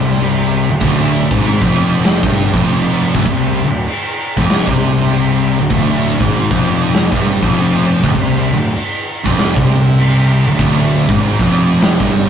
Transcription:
Already playing: picked electric bass C2, distorted electric guitar C3
0.11 snare
0.20 crash
0.70 picked electric bass D1, distorted electric guitar D2
0.81 picked electric bass D1, distorted electric guitar D2, kick, crash
1.31 picked electric bass G#1, distorted electric guitar G#2, kick
1.42 crash
1.62 picked electric bass F1, distorted electric guitar F2, kick
2.03 snare, crash
2.23 picked electric bass G1, distorted electric guitar G2, kick
2.54 picked electric bass F1, distorted electric guitar F2, kick
2.65 crash
3.15 picked electric bass D1, distorted electric guitar D2, kick
3.25 picked electric bass C2, distorted electric guitar C3, kick, crash
3.64 picked electric bass D1, distorted electric guitar D2
3.87 crash
4.37 picked electric bass F1, distorted electric guitar F2, kick
4.48 snare, crash
4.67 picked electric bass C2, distorted electric guitar C3, kick
5.09 crash
5.59 picked electric bass D1, distorted electric guitar D2
5.70 picked electric bass D1, distorted electric guitar D2, kick, crash
6.20 picked electric bass G#1, distorted electric guitar G#2, kick
6.31 crash
6.51 picked electric bass F1, distorted electric guitar F2, kick
6.93 snare, crash
7.12 picked electric bass G1, distorted electric guitar G2, kick
7.43 picked electric bass F1, distorted electric guitar F2, kick
7.54 crash
8.03 picked electric bass D1, distorted electric guitar D2, kick
8.15 picked electric bass C2, distorted electric guitar C3, kick, crash
8.53 picked electric bass D1, distorted electric guitar D2
8.76 crash
9.25 picked electric bass F1, distorted electric guitar F2, kick
9.37 snare, crash
9.56 picked electric bass C2, distorted electric guitar C3, kick
9.98 crash
10.47 picked electric bass D1, distorted electric guitar D2
10.58 picked electric bass D1, distorted electric guitar D2, kick, crash
11.08 picked electric bass G#1, distorted electric guitar G#2, kick
11.20 crash
11.39 picked electric bass F1, distorted electric guitar F2, kick
11.81 snare, crash
12.00 picked electric bass G1, distorted electric guitar G2, kick

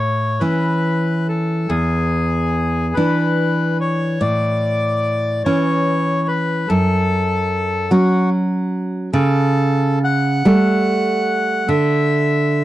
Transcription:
Already playing: nylon-string guitar A2, bandoneon C#5
0.40 nylon-string guitar E3 C#4, bandoneon B4
1.28 bandoneon A4
1.69 nylon-string guitar E2, bandoneon G#4
2.94 nylon-string guitar E3 D4, bandoneon B4
3.80 bandoneon C#5
4.21 nylon-string guitar A2, bandoneon D5
5.44 nylon-string guitar E3 C#4, bandoneon C#5
6.28 bandoneon B4
6.68 nylon-string guitar F#2, bandoneon A4
7.91 nylon-string guitar F#3 C#4, bandoneon F#4
9.13 nylon-string guitar C#3, bandoneon A4
10.04 bandoneon F#5
10.45 nylon-string guitar G3 A3
11.68 nylon-string guitar D3, bandoneon E5

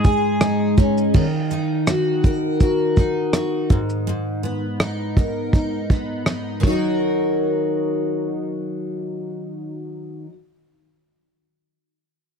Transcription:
Already playing: steel-string acoustic guitar G#2 G#3 D#4, clean electric guitar G#4
0.04 steel-string acoustic guitar G#4, kick, shaker
0.41 steel-string acoustic guitar D#4, cross-stick, shaker
0.78 steel-string acoustic guitar C#4, kick, shaker
0.98 shaker
1.14 steel-string acoustic guitar D#3, kick, crash
1.51 steel-string acoustic guitar D#4, shaker
1.87 steel-string acoustic guitar F#4, cross-stick, shaker
2.24 steel-string acoustic guitar A#4, kick, shaker
2.60 steel-string acoustic guitar F#4, kick, shaker
2.96 steel-string acoustic guitar D#4, kick, shaker
3.33 steel-string acoustic guitar F#4, cross-stick, shaker
3.70 steel-string acoustic guitar G#2, kick, shaker
3.90 shaker
4.07 steel-string acoustic guitar G#2
4.43 steel-string acoustic guitar B3
4.80 steel-string acoustic guitar D#4, cross-stick
5.17 steel-string acoustic guitar A#4, kick
5.53 steel-string acoustic guitar D#4, kick
5.90 steel-string acoustic guitar B3, kick
6.26 steel-string acoustic guitar D#4, cross-stick
6.60 steel-string acoustic guitar D#3 F#3, kick, ride
6.67 steel-string acoustic guitar D#4 F#4
6.72 steel-string acoustic guitar A#4

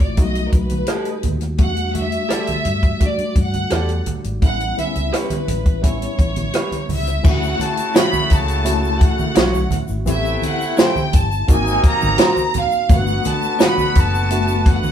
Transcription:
Already playing: fingered electric bass A1, tine electric piano C3 A3 C4 E4 F4 F#4
0.00 violin section D5, kick, closed hi-hat
0.17 fingered electric bass B1, tine electric piano G3 A3 D#4 F#4, kick, closed hi-hat
0.23 violin section D#5
0.35 closed hi-hat
0.50 fingered electric bass B1, violin section A#4, kick, closed hi-hat
0.54 violin section B4, muted conga
0.70 closed hi-hat, high conga
0.87 clean electric guitar G4 A4 D#5, cross-stick, closed hi-hat, muted conga
1.05 closed hi-hat
1.23 fingered electric bass D#2, closed hi-hat, muted conga, high conga, low conga
1.41 cross-stick, closed hi-hat
1.58 fingered electric bass E2, tine electric piano G3 A3 D4 F#4, kick, closed hi-hat, muted conga, low conga
1.63 violin section F#5
1.76 closed hi-hat
1.93 tine electric piano G3 A3 D4 F#4, closed hi-hat, high conga
1.99 violin section E5
2.12 closed hi-hat
2.29 clean electric guitar G4 A4 D5, cross-stick, closed hi-hat, muted conga
2.47 closed hi-hat, high conga
2.65 fingered electric bass G2, closed hi-hat, low conga
2.83 kick, closed hi-hat
3.00 tine electric piano G3 A3 D4 F#4, kick, closed hi-hat, muted conga
3.06 violin section D5
3.18 muted fingered electric bass stroke, closed hi-hat
3.36 fingered electric bass G2, kick, closed hi-hat, muted conga
3.42 violin section F#5
3.54 closed hi-hat, high conga
3.70 fingered electric bass E2, clean electric guitar G4 A4 D5, cross-stick, closed hi-hat
3.89 closed hi-hat
4.06 closed hi-hat, muted conga, high conga, low conga
4.24 fingered electric bass G#1, closed hi-hat
4.41 fingered electric bass A1, tine electric piano G3 B3 C#4 E4, kick, closed hi-hat, muted conga, low conga
4.45 violin section F#5
4.60 closed hi-hat
4.77 tine electric piano G3 B3 C4 E4, violin section E5, closed hi-hat, muted conga, high conga
4.85 tine electric piano C#4
4.95 fingered electric bass C#2, closed hi-hat
5.13 clean electric guitar G4 B4 C#5, violin section B4, cross-stick, closed hi-hat
5.30 muted fingered electric bass stroke, cross-stick, closed hi-hat, high conga
5.48 fingered electric bass A1, closed hi-hat, low conga
5.66 kick, closed hi-hat
5.82 tine electric piano G3 B3 C#4 E4, violin section C#5, kick, closed hi-hat
6.02 closed hi-hat
6.19 fingered electric bass A1, kick, closed hi-hat, muted conga
6.36 closed hi-hat, high conga
6.53 clean electric guitar G4 B4 C#5, cross-stick, closed hi-hat, muted conga
6.72 closed hi-hat, high conga
6.89 fingered electric bass C#2, violin section E5, open hi-hat, high conga, low conga
7.07 cross-stick, closed hi-hat
7.23 fingered electric bass D2, horn section C#3 A3 F#4, tine electric piano A3 C#4 E4 F#4, kick, crash, muted conga, low conga, shaker
7.29 violin section F#5
7.43 shaker
7.59 closed hi-hat, high conga, shaker
7.64 violin section A5
7.77 closed hi-hat, shaker
7.94 clean electric guitar E4 F#4 C#5, violin section B5, snare, closed hi-hat, shaker
8.13 high conga, shaker
8.30 fingered electric bass C#2, violin section A5, kick, closed hi-hat, muted conga, low conga, shaker
8.48 closed hi-hat, shaker
8.64 tine electric piano A3 C#4 E4 F#4, closed hi-hat, muted conga, shaker
8.84 shaker
9.01 violin section F#5, kick, closed hi-hat
9.19 high conga, shaker
9.35 fingered electric bass B1, clean electric guitar E4 F#4 C#5, snare, closed hi-hat, shaker
9.54 high conga, shaker
9.71 closed hi-hat, high conga, low conga, shaker
9.88 fingered electric bass G#1, shaker
10.06 fingered electric bass A1, horn section C3 A3 E4, tine electric piano B3 C4 E4 G4, closed hi-hat, muted conga, low conga, shaker
10.10 violin section E5
10.25 shaker
10.42 closed hi-hat, muted conga, high conga, shaker
10.46 violin section F#5
10.61 shaker
10.77 clean electric guitar E4 G4 C5, snare, closed hi-hat, shaker
10.82 violin section G5
10.96 high conga, shaker
11.13 fingered electric bass G1, violin section A5, kick, closed hi-hat, muted conga, low conga, shaker
11.32 shaker
11.48 fingered electric bass G#1, horn section C3 A#3 D#4, tine electric piano A#3 C4 D#4 F#4, kick, closed hi-hat, shaker
11.52 violin section G#5
11.67 shaker
11.84 kick, closed hi-hat, muted conga
11.88 violin section A#5
12.02 fingered electric bass G#1, high conga, shaker
12.18 clean electric guitar F#4 A#4 C5, snare, closed hi-hat, shaker
12.37 high conga, shaker
12.54 closed hi-hat, high conga, low conga, shaker
12.59 violin section F5
12.72 shaker
12.89 fingered electric bass G1, horn section D3 B3 F#4, tine electric piano A3 A#3 D4 F#4, kick, closed hi-hat, muted conga, low conga, shaker
12.94 tine electric piano B3, violin section F#5
13.07 shaker
13.24 closed hi-hat, muted conga, high conga, shaker
13.30 violin section A5
13.42 shaker
13.59 clean electric guitar D4 F#4 B4, snare, closed hi-hat, muted conga, shaker
13.66 violin section B5
13.78 high conga, shaker
13.95 fingered electric bass F#1, kick, closed hi-hat, low conga, shaker
14.01 violin section A5
14.15 shaker
14.30 tine electric piano A3 B3 D4 F#4, closed hi-hat, shaker
14.48 shaker
14.66 kick, closed hi-hat, muted conga
14.71 violin section F#5
14.84 high conga, shaker

